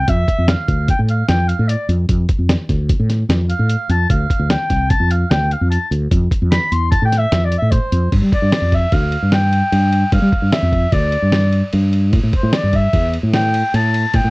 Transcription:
Already playing: G5
0.08 F2 E5, kick, closed hi-hat
0.28 kick, closed hi-hat
0.38 F2
0.48 F5, snare, closed hi-hat
0.68 D2, kick, closed hi-hat
0.88 G5, kick, closed hi-hat
0.99 A2
1.08 F5, closed hi-hat
1.28 F2 G5, snare, closed hi-hat
1.48 F5, closed hi-hat
1.59 A2
1.68 D5, closed hi-hat
1.88 F2, closed hi-hat
2.09 F2, kick, closed hi-hat
2.29 kick, closed hi-hat
2.39 F2
2.49 snare, closed hi-hat
2.69 D2, kick, snare, closed hi-hat
2.90 kick, closed hi-hat
3.00 A2
3.10 snare, closed hi-hat
3.29 F2, snare, closed hi-hat
3.50 F5, closed hi-hat
3.59 A2
3.70 closed hi-hat
3.90 F2 A5, closed hi-hat
4.10 D2 F5, kick, closed hi-hat
4.30 kick, closed hi-hat
4.40 D2
4.50 G5, snare, closed hi-hat
4.70 C2, kick, snare, closed hi-hat
4.90 A5, kick, closed hi-hat
5.00 F2
5.11 F5, closed hi-hat
5.30 D2 G5, snare, closed hi-hat
5.51 F5, closed hi-hat
5.61 F2
5.70 A5, closed hi-hat
5.91 D2, closed hi-hat
6.11 F2, kick, closed hi-hat
6.31 kick, closed hi-hat
6.42 F2
6.52 B5, snare, closed hi-hat
6.72 E2 C6, closed hi-hat
6.91 A5, kick, closed hi-hat
7.02 A2 G5
7.12 snare, closed hi-hat
7.18 E5
7.32 F2, snare, closed hi-hat
7.45 D5
7.52 closed hi-hat
7.57 E5
7.62 A2
7.71 C5, kick, closed hi-hat
7.92 F2, closed hi-hat
8.12 G2, kick, ride
8.22 G3
8.32 D5, kick, ride
8.42 G2
8.52 snare, ride
8.61 F2
8.72 E5, kick, snare, ride
8.92 D2 F5, kick, snare, ride
9.12 ride
9.23 G2
9.32 G5, snare, ride
9.53 ride
9.72 G2, ride
9.93 ride
10.12 G2 F5, kick, ride
10.22 G3
10.33 kick, ride
10.42 G2
10.53 E5, snare, ride
10.63 F2
10.73 kick, ride
10.93 D2 D5, kick, ride
11.13 ride
11.23 G2
11.32 snare, ride
11.53 ride
11.73 G2, ride
11.93 ride
12.13 A2, kick, ride
12.23 A2
12.33 C5, kick, ride
12.43 A2
12.53 D5, snare, ride
12.63 G2
12.73 E5, kick, ride
12.93 E2, kick, ride
13.14 ride
13.23 A2
13.33 G5, snare, ride
13.54 ride
13.74 A2 A5, ride
13.94 ride
14.14 A2 G5, kick, ride
14.24 A2

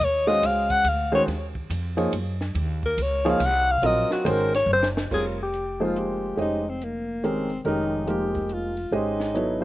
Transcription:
0.00 D#2, ride
0.04 C#5
0.27 G#3 C#4 F#4 C5 D#5 F5, snare
0.43 C#2 F5, hi-hat pedal, ride
0.70 F#5, kick, ride
0.84 D2, hi-hat pedal, ride
0.88 F5
1.12 D#3 G#3 C#4 F#4 C5 C#5
1.27 D#2, snare, ride
1.55 kick
1.70 F2, hi-hat pedal, ride
1.97 F3 A#3 D#4 G#4 C#5, ride
2.13 F#2, ride
2.41 snare
2.55 D#2, ride
2.83 A#4, kick
2.97 C#2, hi-hat pedal, ride
3.02 C#5
3.25 F3 A#3 D#4 G#4 C#5, ride
3.30 F5
3.40 C2, hi-hat pedal, ride
3.45 F#5
3.71 F5
3.82 A#1 F#3 C4 F4 A#4 D#5, ride
3.86 D#5
4.11 F#4, snare
4.25 G#1 D#3 G#3 C#4 F#4 C5, hi-hat pedal, ride
4.30 A#4
4.54 C#5, snare, ride
4.66 F#1
4.73 C5
4.83 snare
4.97 snare
5.11 F1 G3 C4 F4 G#4 A#4 C#5, kick, crash
5.43 G4
5.54 closed hi-hat
5.80 F3 G#3 A#3 D#4 C5
5.84 F4
5.96 G4, closed hi-hat
6.37 F1 G#3 C#4 G4 C5 D#5, open hi-hat
6.42 D#4
6.69 C4
6.82 A#3, closed hi-hat
7.23 D#3 G#3 C4 C#4 G4 A#4, closed hi-hat
7.50 open hi-hat
7.65 F1 D#3 G#3 C#4 D#4 G4 A#4, open hi-hat
8.07 F3 G#3 A#3 D#4 G4 A#4, closed hi-hat
8.34 kick, open hi-hat
8.49 closed hi-hat
8.54 F4
8.77 open hi-hat
8.91 G#1 G#3 C#4 G4 C5 D#5, open hi-hat
8.96 D#4
9.20 snare
9.34 F#3 B3 E4 A4 C#5, closed hi-hat
9.61 F3 A#3

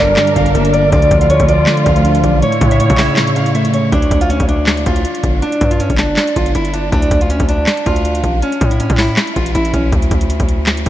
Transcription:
Already playing: G1 G2 G3 D4 A#4
0.00 D3 D5
0.17 G2, snare, clap, closed hi-hat
0.27 closed hi-hat
0.36 G1 D3 F5, kick, closed hi-hat
0.46 closed hi-hat
0.55 G1 A#3 E5, closed hi-hat
0.65 closed hi-hat
0.73 D4 D5, closed hi-hat
0.92 D2 D3 A3 F4 D5, kick, closed hi-hat
1.02 closed hi-hat
1.11 D2 F3, kick, closed hi-hat
1.21 F5, closed hi-hat
1.30 D3 C#5, closed hi-hat
1.40 D2, kick, closed hi-hat
1.49 F3 D5, closed hi-hat
1.67 D3, snare, clap, closed hi-hat
1.77 closed hi-hat
1.86 D2 F3 F5, kick, closed hi-hat
1.96 closed hi-hat
2.04 D4, closed hi-hat
2.15 closed hi-hat
2.23 A1 D5, kick, closed hi-hat
2.42 A2 E4 C#5, closed hi-hat
2.52 closed hi-hat
2.61 A2 C#3, kick, closed hi-hat
2.71 E5, closed hi-hat
2.80 A2 C#5, closed hi-hat
2.90 A2, kick, closed hi-hat
2.98 C#3 E5, snare, clap, open hi-hat
3.17 A2, snare, clap, closed hi-hat
3.27 closed hi-hat
3.36 C#3 F5, closed hi-hat
3.46 closed hi-hat
3.55 A3 E5, closed hi-hat
3.65 closed hi-hat
3.73 C#4 C#5, closed hi-hat
3.92 D2 D4, kick, closed hi-hat
4.02 closed hi-hat
4.11 D2, kick, closed hi-hat
4.21 F4, closed hi-hat
4.30 C#4, closed hi-hat
4.40 D2, kick, closed hi-hat
4.48 D4, closed hi-hat
4.67 snare, clap, closed hi-hat
4.77 closed hi-hat
4.86 D2 F4, kick, closed hi-hat
4.96 closed hi-hat
5.05 closed hi-hat
5.15 closed hi-hat
5.24 G1, kick, closed hi-hat
5.42 D4, closed hi-hat
5.52 closed hi-hat
5.61 G2, kick, closed hi-hat
5.71 F4, closed hi-hat
5.80 C#4, closed hi-hat
5.90 G1, kick, closed hi-hat
5.98 D4, snare, clap, closed hi-hat
6.17 snare, clap, closed hi-hat
6.27 closed hi-hat
6.36 G1 F4, kick, closed hi-hat
6.46 closed hi-hat
6.55 G1 E4, closed hi-hat
6.65 closed hi-hat
6.74 D4, closed hi-hat
6.92 D2 D4, kick, closed hi-hat
7.02 closed hi-hat
7.11 D2, kick, closed hi-hat
7.21 F4, closed hi-hat
7.30 C#4, closed hi-hat
7.40 D2, kick, closed hi-hat
7.49 D4, closed hi-hat
7.67 snare, clap, closed hi-hat
7.77 closed hi-hat
7.86 D2 F4, kick, closed hi-hat
7.96 closed hi-hat
8.05 closed hi-hat
8.15 closed hi-hat
8.24 A1, kick, closed hi-hat
8.42 C#4, closed hi-hat
8.52 closed hi-hat
8.61 A2, kick, closed hi-hat
8.71 E4, closed hi-hat
8.80 C#4, closed hi-hat
8.90 A2, kick, closed hi-hat
8.98 E4, snare, clap, open hi-hat
9.17 snare, clap, closed hi-hat
9.27 closed hi-hat
9.36 A1 F4, kick, closed hi-hat
9.46 closed hi-hat
9.55 A1 E4, closed hi-hat
9.65 closed hi-hat
9.73 A1 C#4, kick, closed hi-hat
9.92 D2, kick, closed hi-hat
10.02 closed hi-hat
10.11 D2, kick, closed hi-hat
10.21 closed hi-hat
10.30 closed hi-hat
10.40 D2, kick, closed hi-hat
10.49 closed hi-hat
10.67 snare, clap, closed hi-hat
10.77 closed hi-hat
10.86 closed hi-hat

